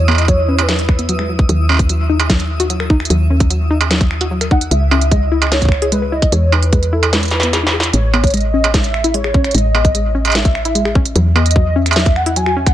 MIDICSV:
0, 0, Header, 1, 7, 480
1, 0, Start_track
1, 0, Tempo, 402685
1, 1777, Time_signature, 4, 2, 24, 8
1, 15184, End_track
2, 0, Start_track
2, 0, Title_t, "Synth texture"
2, 0, Program_c, 0, 99
2, 0, Note_on_c, 0, 64, 87
2, 0, Note_on_c, 0, 87, 84
2, 9467, Note_off_c, 0, 64, 0
2, 9468, Note_off_c, 0, 87, 0
2, 15184, End_track
3, 0, Start_track
3, 0, Title_t, "Soft synth lead"
3, 0, Program_c, 1, 80
3, 0, Note_on_c, 1, 73, 101
3, 215, Note_on_c, 1, 75, 87
3, 233, Note_off_c, 1, 73, 0
3, 336, Note_on_c, 1, 73, 90
3, 353, Note_off_c, 1, 75, 0
3, 574, Note_on_c, 1, 71, 82
3, 592, Note_off_c, 1, 73, 0
3, 659, Note_on_c, 1, 73, 67
3, 676, Note_off_c, 1, 71, 0
3, 743, Note_on_c, 1, 71, 85
3, 761, Note_off_c, 1, 73, 0
3, 1537, Note_off_c, 1, 71, 0
3, 5376, Note_on_c, 1, 78, 104
3, 5617, Note_on_c, 1, 76, 116
3, 5635, Note_off_c, 1, 78, 0
3, 6091, Note_off_c, 1, 76, 0
3, 6099, Note_on_c, 1, 75, 105
3, 6544, Note_off_c, 1, 75, 0
3, 6578, Note_on_c, 1, 73, 105
3, 7024, Note_off_c, 1, 73, 0
3, 7057, Note_on_c, 1, 71, 94
3, 7280, Note_off_c, 1, 71, 0
3, 7297, Note_on_c, 1, 75, 95
3, 7537, Note_on_c, 1, 73, 104
3, 7555, Note_off_c, 1, 75, 0
3, 7777, Note_on_c, 1, 71, 99
3, 7795, Note_off_c, 1, 73, 0
3, 8257, Note_on_c, 1, 69, 86
3, 8275, Note_off_c, 1, 71, 0
3, 8492, Note_off_c, 1, 69, 0
3, 8499, Note_on_c, 1, 71, 87
3, 9170, Note_off_c, 1, 71, 0
3, 9458, Note_on_c, 1, 73, 102
3, 9904, Note_off_c, 1, 73, 0
3, 9936, Note_on_c, 1, 75, 104
3, 10383, Note_off_c, 1, 75, 0
3, 10414, Note_on_c, 1, 76, 120
3, 10892, Note_on_c, 1, 73, 105
3, 10910, Note_off_c, 1, 76, 0
3, 11366, Note_off_c, 1, 73, 0
3, 11373, Note_on_c, 1, 75, 115
3, 12336, Note_on_c, 1, 76, 101
3, 12354, Note_off_c, 1, 75, 0
3, 13056, Note_off_c, 1, 76, 0
3, 13537, Note_on_c, 1, 75, 95
3, 14015, Note_on_c, 1, 76, 96
3, 14033, Note_off_c, 1, 75, 0
3, 14497, Note_on_c, 1, 78, 91
3, 14514, Note_off_c, 1, 76, 0
3, 14737, Note_on_c, 1, 80, 102
3, 14755, Note_off_c, 1, 78, 0
3, 15097, Note_on_c, 1, 78, 92
3, 15115, Note_off_c, 1, 80, 0
3, 15184, Note_off_c, 1, 78, 0
3, 15184, End_track
4, 0, Start_track
4, 0, Title_t, "Synth arpeggio sound"
4, 0, Program_c, 2, 84
4, 98, Note_on_c, 2, 59, 97
4, 134, Note_off_c, 2, 59, 0
4, 338, Note_on_c, 2, 54, 83
4, 373, Note_off_c, 2, 54, 0
4, 578, Note_on_c, 2, 61, 102
4, 637, Note_off_c, 2, 61, 0
4, 818, Note_on_c, 2, 54, 82
4, 853, Note_off_c, 2, 54, 0
4, 1178, Note_on_c, 2, 59, 74
4, 1213, Note_off_c, 2, 59, 0
4, 1298, Note_on_c, 2, 54, 98
4, 1333, Note_off_c, 2, 54, 0
4, 1418, Note_on_c, 2, 56, 72
4, 1477, Note_off_c, 2, 56, 0
4, 1538, Note_on_c, 2, 54, 76
4, 1598, Note_off_c, 2, 54, 0
4, 1778, Note_on_c, 2, 54, 77
4, 1837, Note_off_c, 2, 54, 0
4, 2017, Note_on_c, 2, 61, 95
4, 2053, Note_off_c, 2, 61, 0
4, 2258, Note_on_c, 2, 54, 84
4, 2317, Note_off_c, 2, 54, 0
4, 2497, Note_on_c, 2, 63, 103
4, 2557, Note_off_c, 2, 63, 0
4, 2737, Note_on_c, 2, 54, 82
4, 2773, Note_off_c, 2, 54, 0
4, 3096, Note_on_c, 2, 66, 99
4, 3133, Note_off_c, 2, 66, 0
4, 3217, Note_on_c, 2, 54, 99
4, 3307, Note_off_c, 2, 54, 0
4, 3337, Note_on_c, 2, 70, 72
4, 3373, Note_off_c, 2, 70, 0
4, 3458, Note_on_c, 2, 63, 104
4, 3493, Note_off_c, 2, 63, 0
4, 3698, Note_on_c, 2, 54, 82
4, 3757, Note_off_c, 2, 54, 0
4, 3937, Note_on_c, 2, 61, 97
4, 3973, Note_off_c, 2, 61, 0
4, 4177, Note_on_c, 2, 54, 83
4, 4237, Note_off_c, 2, 54, 0
4, 4416, Note_on_c, 2, 63, 105
4, 4477, Note_off_c, 2, 63, 0
4, 4657, Note_on_c, 2, 54, 84
4, 4693, Note_off_c, 2, 54, 0
4, 5018, Note_on_c, 2, 66, 99
4, 5053, Note_off_c, 2, 66, 0
4, 5137, Note_on_c, 2, 54, 98
4, 5227, Note_off_c, 2, 54, 0
4, 5257, Note_on_c, 2, 70, 75
4, 5293, Note_off_c, 2, 70, 0
4, 5377, Note_on_c, 2, 63, 100
4, 5413, Note_off_c, 2, 63, 0
4, 5617, Note_on_c, 2, 56, 80
4, 5677, Note_off_c, 2, 56, 0
4, 5858, Note_on_c, 2, 61, 97
4, 5893, Note_off_c, 2, 61, 0
4, 6097, Note_on_c, 2, 56, 84
4, 6157, Note_off_c, 2, 56, 0
4, 6337, Note_on_c, 2, 64, 101
4, 6397, Note_off_c, 2, 64, 0
4, 6578, Note_on_c, 2, 56, 80
4, 6613, Note_off_c, 2, 56, 0
4, 6938, Note_on_c, 2, 68, 97
4, 6974, Note_off_c, 2, 68, 0
4, 7058, Note_on_c, 2, 56, 99
4, 7147, Note_off_c, 2, 56, 0
4, 7178, Note_on_c, 2, 71, 74
4, 7213, Note_off_c, 2, 71, 0
4, 7298, Note_on_c, 2, 64, 101
4, 7333, Note_off_c, 2, 64, 0
4, 7537, Note_on_c, 2, 56, 79
4, 7597, Note_off_c, 2, 56, 0
4, 7778, Note_on_c, 2, 63, 99
4, 7814, Note_off_c, 2, 63, 0
4, 8018, Note_on_c, 2, 56, 85
4, 8077, Note_off_c, 2, 56, 0
4, 8257, Note_on_c, 2, 64, 104
4, 8317, Note_off_c, 2, 64, 0
4, 8498, Note_on_c, 2, 56, 83
4, 8534, Note_off_c, 2, 56, 0
4, 8858, Note_on_c, 2, 59, 95
4, 8917, Note_off_c, 2, 59, 0
4, 8978, Note_on_c, 2, 68, 82
4, 9068, Note_off_c, 2, 68, 0
4, 9098, Note_on_c, 2, 63, 74
4, 9188, Note_off_c, 2, 63, 0
4, 9218, Note_on_c, 2, 68, 77
4, 9278, Note_off_c, 2, 68, 0
4, 9458, Note_on_c, 2, 56, 81
4, 9517, Note_off_c, 2, 56, 0
4, 9697, Note_on_c, 2, 59, 103
4, 9733, Note_off_c, 2, 59, 0
4, 9938, Note_on_c, 2, 56, 86
4, 9997, Note_off_c, 2, 56, 0
4, 10177, Note_on_c, 2, 61, 103
4, 10237, Note_off_c, 2, 61, 0
4, 10418, Note_on_c, 2, 56, 83
4, 10454, Note_off_c, 2, 56, 0
4, 10778, Note_on_c, 2, 64, 96
4, 10813, Note_off_c, 2, 64, 0
4, 10898, Note_on_c, 2, 56, 99
4, 10988, Note_off_c, 2, 56, 0
4, 11018, Note_on_c, 2, 68, 74
4, 11054, Note_off_c, 2, 68, 0
4, 11138, Note_on_c, 2, 61, 107
4, 11174, Note_off_c, 2, 61, 0
4, 11377, Note_on_c, 2, 56, 82
4, 11437, Note_off_c, 2, 56, 0
4, 11617, Note_on_c, 2, 59, 100
4, 11653, Note_off_c, 2, 59, 0
4, 11857, Note_on_c, 2, 56, 86
4, 11917, Note_off_c, 2, 56, 0
4, 12097, Note_on_c, 2, 61, 104
4, 12157, Note_off_c, 2, 61, 0
4, 12336, Note_on_c, 2, 56, 80
4, 12372, Note_off_c, 2, 56, 0
4, 12696, Note_on_c, 2, 64, 101
4, 12733, Note_off_c, 2, 64, 0
4, 12815, Note_on_c, 2, 56, 100
4, 12906, Note_off_c, 2, 56, 0
4, 12935, Note_on_c, 2, 68, 74
4, 12972, Note_off_c, 2, 68, 0
4, 13055, Note_on_c, 2, 61, 104
4, 13092, Note_off_c, 2, 61, 0
4, 13296, Note_on_c, 2, 54, 82
4, 13357, Note_off_c, 2, 54, 0
4, 13536, Note_on_c, 2, 59, 102
4, 13573, Note_off_c, 2, 59, 0
4, 13777, Note_on_c, 2, 54, 86
4, 13837, Note_off_c, 2, 54, 0
4, 14017, Note_on_c, 2, 61, 102
4, 14077, Note_off_c, 2, 61, 0
4, 14257, Note_on_c, 2, 54, 83
4, 14293, Note_off_c, 2, 54, 0
4, 14617, Note_on_c, 2, 64, 98
4, 14653, Note_off_c, 2, 64, 0
4, 14737, Note_on_c, 2, 54, 99
4, 14827, Note_off_c, 2, 54, 0
4, 14857, Note_on_c, 2, 66, 75
4, 14893, Note_off_c, 2, 66, 0
4, 14977, Note_on_c, 2, 61, 105
4, 15013, Note_off_c, 2, 61, 0
4, 15184, End_track
5, 0, Start_track
5, 0, Title_t, "FM bass"
5, 0, Program_c, 3, 39
5, 0, Note_on_c, 3, 40, 87
5, 1753, Note_off_c, 3, 40, 0
5, 1777, Note_on_c, 3, 39, 91
5, 3673, Note_off_c, 3, 39, 0
5, 3697, Note_on_c, 3, 39, 88
5, 5593, Note_off_c, 3, 39, 0
5, 5616, Note_on_c, 3, 37, 90
5, 7513, Note_off_c, 3, 37, 0
5, 7537, Note_on_c, 3, 40, 88
5, 9433, Note_off_c, 3, 40, 0
5, 9458, Note_on_c, 3, 33, 91
5, 11354, Note_off_c, 3, 33, 0
5, 11378, Note_on_c, 3, 33, 90
5, 13274, Note_off_c, 3, 33, 0
5, 13297, Note_on_c, 3, 40, 90
5, 15184, Note_off_c, 3, 40, 0
5, 15184, End_track
6, 0, Start_track
6, 0, Title_t, "Struck metal"
6, 97, Note_on_c, 9, 56, 82
6, 137, Note_off_c, 9, 56, 0
6, 137, Note_on_c, 9, 56, 66
6, 177, Note_off_c, 9, 56, 0
6, 177, Note_on_c, 9, 56, 55
6, 217, Note_off_c, 9, 56, 0
6, 217, Note_on_c, 9, 56, 46
6, 257, Note_off_c, 9, 56, 0
6, 257, Note_on_c, 9, 56, 37
6, 298, Note_off_c, 9, 56, 0
6, 298, Note_on_c, 9, 56, 30
6, 417, Note_off_c, 9, 56, 0
6, 698, Note_on_c, 9, 56, 83
6, 817, Note_off_c, 9, 56, 0
6, 2017, Note_on_c, 9, 56, 83
6, 2047, Note_off_c, 9, 56, 0
6, 2047, Note_on_c, 9, 56, 71
6, 2078, Note_off_c, 9, 56, 0
6, 2078, Note_on_c, 9, 56, 57
6, 2108, Note_off_c, 9, 56, 0
6, 2108, Note_on_c, 9, 56, 46
6, 2227, Note_off_c, 9, 56, 0
6, 2618, Note_on_c, 9, 56, 88
6, 2737, Note_off_c, 9, 56, 0
6, 4537, Note_on_c, 9, 56, 89
6, 4656, Note_off_c, 9, 56, 0
6, 5857, Note_on_c, 9, 56, 93
6, 5976, Note_off_c, 9, 56, 0
6, 6457, Note_on_c, 9, 56, 93
6, 6576, Note_off_c, 9, 56, 0
6, 7777, Note_on_c, 9, 56, 93
6, 7896, Note_off_c, 9, 56, 0
6, 8377, Note_on_c, 9, 56, 90
6, 8496, Note_off_c, 9, 56, 0
6, 9698, Note_on_c, 9, 56, 91
6, 9817, Note_off_c, 9, 56, 0
6, 10299, Note_on_c, 9, 56, 89
6, 10418, Note_off_c, 9, 56, 0
6, 11618, Note_on_c, 9, 56, 87
6, 11737, Note_off_c, 9, 56, 0
6, 12217, Note_on_c, 9, 56, 39
6, 12248, Note_off_c, 9, 56, 0
6, 12248, Note_on_c, 9, 56, 50
6, 12278, Note_off_c, 9, 56, 0
6, 12278, Note_on_c, 9, 56, 61
6, 12307, Note_off_c, 9, 56, 0
6, 12307, Note_on_c, 9, 56, 71
6, 12426, Note_off_c, 9, 56, 0
6, 13537, Note_on_c, 9, 56, 87
6, 13656, Note_off_c, 9, 56, 0
6, 14197, Note_on_c, 9, 56, 86
6, 14316, Note_off_c, 9, 56, 0
6, 15184, End_track
7, 0, Start_track
7, 0, Title_t, "Drums"
7, 217, Note_on_c, 9, 42, 52
7, 337, Note_off_c, 9, 42, 0
7, 337, Note_on_c, 9, 36, 118
7, 337, Note_on_c, 9, 42, 61
7, 456, Note_off_c, 9, 36, 0
7, 456, Note_off_c, 9, 42, 0
7, 698, Note_on_c, 9, 42, 49
7, 817, Note_off_c, 9, 42, 0
7, 818, Note_on_c, 9, 26, 50
7, 818, Note_on_c, 9, 40, 122
7, 818, Note_on_c, 9, 42, 63
7, 937, Note_off_c, 9, 26, 0
7, 937, Note_off_c, 9, 40, 0
7, 937, Note_off_c, 9, 42, 0
7, 938, Note_on_c, 9, 42, 35
7, 1057, Note_off_c, 9, 42, 0
7, 1057, Note_on_c, 9, 36, 110
7, 1058, Note_on_c, 9, 26, 49
7, 1176, Note_off_c, 9, 36, 0
7, 1177, Note_off_c, 9, 26, 0
7, 1177, Note_on_c, 9, 42, 51
7, 1296, Note_off_c, 9, 42, 0
7, 1297, Note_on_c, 9, 42, 64
7, 1416, Note_off_c, 9, 42, 0
7, 1418, Note_on_c, 9, 26, 46
7, 1537, Note_off_c, 9, 26, 0
7, 1657, Note_on_c, 9, 36, 117
7, 1776, Note_off_c, 9, 36, 0
7, 1777, Note_on_c, 9, 42, 62
7, 1896, Note_off_c, 9, 42, 0
7, 2137, Note_on_c, 9, 36, 103
7, 2138, Note_on_c, 9, 42, 49
7, 2256, Note_off_c, 9, 36, 0
7, 2257, Note_off_c, 9, 42, 0
7, 2257, Note_on_c, 9, 42, 60
7, 2377, Note_off_c, 9, 42, 0
7, 2618, Note_on_c, 9, 26, 34
7, 2618, Note_on_c, 9, 42, 46
7, 2737, Note_off_c, 9, 26, 0
7, 2737, Note_off_c, 9, 42, 0
7, 2737, Note_on_c, 9, 36, 112
7, 2737, Note_on_c, 9, 40, 114
7, 2737, Note_on_c, 9, 42, 63
7, 2856, Note_off_c, 9, 36, 0
7, 2856, Note_off_c, 9, 40, 0
7, 2856, Note_off_c, 9, 42, 0
7, 2858, Note_on_c, 9, 42, 34
7, 2977, Note_off_c, 9, 42, 0
7, 3097, Note_on_c, 9, 42, 50
7, 3216, Note_off_c, 9, 42, 0
7, 3218, Note_on_c, 9, 42, 62
7, 3337, Note_off_c, 9, 42, 0
7, 3338, Note_on_c, 9, 26, 46
7, 3457, Note_off_c, 9, 26, 0
7, 3457, Note_on_c, 9, 36, 102
7, 3576, Note_off_c, 9, 36, 0
7, 3578, Note_on_c, 9, 26, 50
7, 3638, Note_on_c, 9, 42, 50
7, 3697, Note_off_c, 9, 26, 0
7, 3698, Note_off_c, 9, 42, 0
7, 3698, Note_on_c, 9, 42, 60
7, 3817, Note_off_c, 9, 42, 0
7, 4057, Note_on_c, 9, 36, 109
7, 4057, Note_on_c, 9, 42, 49
7, 4176, Note_off_c, 9, 36, 0
7, 4177, Note_off_c, 9, 42, 0
7, 4178, Note_on_c, 9, 42, 60
7, 4297, Note_off_c, 9, 42, 0
7, 4537, Note_on_c, 9, 42, 49
7, 4656, Note_off_c, 9, 42, 0
7, 4657, Note_on_c, 9, 26, 52
7, 4657, Note_on_c, 9, 40, 112
7, 4657, Note_on_c, 9, 42, 61
7, 4776, Note_off_c, 9, 26, 0
7, 4776, Note_off_c, 9, 40, 0
7, 4776, Note_off_c, 9, 42, 0
7, 4776, Note_on_c, 9, 42, 35
7, 4777, Note_on_c, 9, 36, 97
7, 4895, Note_off_c, 9, 42, 0
7, 4896, Note_off_c, 9, 36, 0
7, 4897, Note_on_c, 9, 26, 52
7, 5016, Note_off_c, 9, 26, 0
7, 5017, Note_on_c, 9, 42, 50
7, 5136, Note_off_c, 9, 42, 0
7, 5257, Note_on_c, 9, 26, 48
7, 5257, Note_on_c, 9, 42, 58
7, 5377, Note_off_c, 9, 26, 0
7, 5377, Note_off_c, 9, 42, 0
7, 5377, Note_on_c, 9, 36, 108
7, 5496, Note_off_c, 9, 36, 0
7, 5498, Note_on_c, 9, 42, 50
7, 5617, Note_off_c, 9, 42, 0
7, 5618, Note_on_c, 9, 42, 64
7, 5737, Note_off_c, 9, 42, 0
7, 5977, Note_on_c, 9, 42, 51
7, 6097, Note_off_c, 9, 42, 0
7, 6097, Note_on_c, 9, 36, 100
7, 6098, Note_on_c, 9, 42, 61
7, 6216, Note_off_c, 9, 36, 0
7, 6217, Note_off_c, 9, 42, 0
7, 6457, Note_on_c, 9, 42, 51
7, 6517, Note_on_c, 9, 26, 36
7, 6576, Note_off_c, 9, 42, 0
7, 6576, Note_on_c, 9, 40, 115
7, 6576, Note_on_c, 9, 42, 65
7, 6637, Note_off_c, 9, 26, 0
7, 6696, Note_off_c, 9, 40, 0
7, 6696, Note_off_c, 9, 42, 0
7, 6697, Note_on_c, 9, 36, 47
7, 6697, Note_on_c, 9, 42, 35
7, 6737, Note_off_c, 9, 36, 0
7, 6737, Note_on_c, 9, 36, 65
7, 6777, Note_off_c, 9, 36, 0
7, 6777, Note_on_c, 9, 36, 86
7, 6816, Note_off_c, 9, 42, 0
7, 6817, Note_on_c, 9, 26, 52
7, 6897, Note_off_c, 9, 36, 0
7, 6936, Note_off_c, 9, 26, 0
7, 6937, Note_on_c, 9, 42, 52
7, 7056, Note_off_c, 9, 42, 0
7, 7057, Note_on_c, 9, 42, 63
7, 7176, Note_off_c, 9, 42, 0
7, 7417, Note_on_c, 9, 42, 50
7, 7418, Note_on_c, 9, 36, 94
7, 7537, Note_off_c, 9, 36, 0
7, 7537, Note_off_c, 9, 42, 0
7, 7537, Note_on_c, 9, 42, 64
7, 7656, Note_off_c, 9, 42, 0
7, 7897, Note_on_c, 9, 42, 53
7, 8017, Note_off_c, 9, 42, 0
7, 8017, Note_on_c, 9, 42, 63
7, 8018, Note_on_c, 9, 36, 113
7, 8136, Note_off_c, 9, 42, 0
7, 8137, Note_off_c, 9, 36, 0
7, 8137, Note_on_c, 9, 42, 36
7, 8256, Note_off_c, 9, 42, 0
7, 8377, Note_on_c, 9, 42, 51
7, 8496, Note_off_c, 9, 42, 0
7, 8497, Note_on_c, 9, 38, 66
7, 8497, Note_on_c, 9, 40, 117
7, 8497, Note_on_c, 9, 42, 67
7, 8616, Note_off_c, 9, 38, 0
7, 8616, Note_off_c, 9, 40, 0
7, 8616, Note_off_c, 9, 42, 0
7, 8617, Note_on_c, 9, 42, 35
7, 8647, Note_off_c, 9, 42, 0
7, 8647, Note_on_c, 9, 42, 28
7, 8677, Note_off_c, 9, 42, 0
7, 8677, Note_on_c, 9, 42, 23
7, 8707, Note_off_c, 9, 42, 0
7, 8707, Note_on_c, 9, 42, 19
7, 8718, Note_on_c, 9, 38, 76
7, 8818, Note_off_c, 9, 38, 0
7, 8818, Note_on_c, 9, 38, 80
7, 8827, Note_off_c, 9, 42, 0
7, 8858, Note_on_c, 9, 42, 54
7, 8937, Note_off_c, 9, 38, 0
7, 8977, Note_off_c, 9, 42, 0
7, 8978, Note_on_c, 9, 38, 89
7, 8978, Note_on_c, 9, 42, 64
7, 9097, Note_off_c, 9, 38, 0
7, 9097, Note_off_c, 9, 42, 0
7, 9138, Note_on_c, 9, 38, 90
7, 9257, Note_off_c, 9, 38, 0
7, 9298, Note_on_c, 9, 38, 97
7, 9338, Note_on_c, 9, 42, 53
7, 9417, Note_off_c, 9, 38, 0
7, 9457, Note_off_c, 9, 42, 0
7, 9458, Note_on_c, 9, 42, 67
7, 9577, Note_off_c, 9, 42, 0
7, 9818, Note_on_c, 9, 36, 108
7, 9818, Note_on_c, 9, 42, 52
7, 9858, Note_off_c, 9, 42, 0
7, 9858, Note_on_c, 9, 42, 43
7, 9898, Note_off_c, 9, 42, 0
7, 9898, Note_on_c, 9, 42, 36
7, 9937, Note_off_c, 9, 36, 0
7, 9938, Note_off_c, 9, 42, 0
7, 9938, Note_on_c, 9, 42, 69
7, 9979, Note_off_c, 9, 42, 0
7, 9979, Note_on_c, 9, 42, 22
7, 10019, Note_off_c, 9, 42, 0
7, 10019, Note_on_c, 9, 42, 19
7, 10138, Note_off_c, 9, 42, 0
7, 10299, Note_on_c, 9, 42, 53
7, 10418, Note_off_c, 9, 42, 0
7, 10418, Note_on_c, 9, 36, 114
7, 10419, Note_on_c, 9, 40, 119
7, 10419, Note_on_c, 9, 42, 70
7, 10537, Note_off_c, 9, 36, 0
7, 10538, Note_off_c, 9, 40, 0
7, 10538, Note_off_c, 9, 42, 0
7, 10539, Note_on_c, 9, 42, 38
7, 10658, Note_off_c, 9, 42, 0
7, 10658, Note_on_c, 9, 26, 57
7, 10777, Note_off_c, 9, 26, 0
7, 10778, Note_on_c, 9, 42, 56
7, 10897, Note_off_c, 9, 42, 0
7, 10898, Note_on_c, 9, 42, 69
7, 11017, Note_off_c, 9, 42, 0
7, 11018, Note_on_c, 9, 26, 52
7, 11137, Note_off_c, 9, 26, 0
7, 11137, Note_on_c, 9, 36, 103
7, 11257, Note_off_c, 9, 36, 0
7, 11258, Note_on_c, 9, 26, 53
7, 11258, Note_on_c, 9, 42, 24
7, 11337, Note_off_c, 9, 42, 0
7, 11337, Note_on_c, 9, 42, 35
7, 11377, Note_off_c, 9, 26, 0
7, 11378, Note_off_c, 9, 42, 0
7, 11378, Note_on_c, 9, 42, 71
7, 11418, Note_off_c, 9, 42, 0
7, 11418, Note_on_c, 9, 42, 43
7, 11537, Note_off_c, 9, 42, 0
7, 11737, Note_on_c, 9, 36, 121
7, 11738, Note_on_c, 9, 42, 55
7, 11856, Note_off_c, 9, 36, 0
7, 11857, Note_off_c, 9, 42, 0
7, 11857, Note_on_c, 9, 42, 70
7, 11977, Note_off_c, 9, 42, 0
7, 12217, Note_on_c, 9, 42, 51
7, 12298, Note_off_c, 9, 42, 0
7, 12298, Note_on_c, 9, 42, 43
7, 12338, Note_off_c, 9, 42, 0
7, 12338, Note_on_c, 9, 26, 53
7, 12338, Note_on_c, 9, 40, 127
7, 12338, Note_on_c, 9, 42, 71
7, 12378, Note_off_c, 9, 42, 0
7, 12378, Note_on_c, 9, 42, 35
7, 12457, Note_off_c, 9, 26, 0
7, 12457, Note_off_c, 9, 40, 0
7, 12457, Note_on_c, 9, 36, 106
7, 12458, Note_off_c, 9, 42, 0
7, 12458, Note_on_c, 9, 42, 39
7, 12576, Note_off_c, 9, 36, 0
7, 12577, Note_off_c, 9, 42, 0
7, 12578, Note_on_c, 9, 26, 53
7, 12697, Note_off_c, 9, 26, 0
7, 12697, Note_on_c, 9, 42, 56
7, 12816, Note_off_c, 9, 42, 0
7, 12817, Note_on_c, 9, 42, 69
7, 12936, Note_off_c, 9, 42, 0
7, 12938, Note_on_c, 9, 26, 51
7, 13057, Note_off_c, 9, 26, 0
7, 13057, Note_on_c, 9, 36, 120
7, 13176, Note_off_c, 9, 36, 0
7, 13177, Note_on_c, 9, 42, 56
7, 13296, Note_off_c, 9, 42, 0
7, 13297, Note_on_c, 9, 42, 67
7, 13416, Note_off_c, 9, 42, 0
7, 13657, Note_on_c, 9, 42, 55
7, 13717, Note_off_c, 9, 42, 0
7, 13717, Note_on_c, 9, 42, 69
7, 13777, Note_on_c, 9, 36, 111
7, 13836, Note_off_c, 9, 42, 0
7, 13896, Note_off_c, 9, 36, 0
7, 14137, Note_on_c, 9, 26, 35
7, 14137, Note_on_c, 9, 42, 50
7, 14217, Note_off_c, 9, 42, 0
7, 14217, Note_on_c, 9, 42, 42
7, 14256, Note_off_c, 9, 26, 0
7, 14256, Note_off_c, 9, 42, 0
7, 14256, Note_on_c, 9, 40, 127
7, 14256, Note_on_c, 9, 42, 67
7, 14297, Note_off_c, 9, 42, 0
7, 14297, Note_on_c, 9, 42, 34
7, 14375, Note_off_c, 9, 40, 0
7, 14377, Note_off_c, 9, 42, 0
7, 14377, Note_on_c, 9, 36, 122
7, 14377, Note_on_c, 9, 42, 39
7, 14496, Note_off_c, 9, 36, 0
7, 14496, Note_off_c, 9, 42, 0
7, 14497, Note_on_c, 9, 26, 50
7, 14616, Note_off_c, 9, 26, 0
7, 14617, Note_on_c, 9, 42, 56
7, 14736, Note_off_c, 9, 42, 0
7, 14737, Note_on_c, 9, 42, 67
7, 14856, Note_off_c, 9, 42, 0
7, 14857, Note_on_c, 9, 26, 49
7, 14976, Note_off_c, 9, 26, 0
7, 15097, Note_on_c, 9, 26, 49
7, 15097, Note_on_c, 9, 36, 105
7, 15097, Note_on_c, 9, 42, 53
7, 15184, Note_off_c, 9, 26, 0
7, 15184, Note_off_c, 9, 36, 0
7, 15184, Note_off_c, 9, 42, 0
7, 15184, End_track
0, 0, End_of_file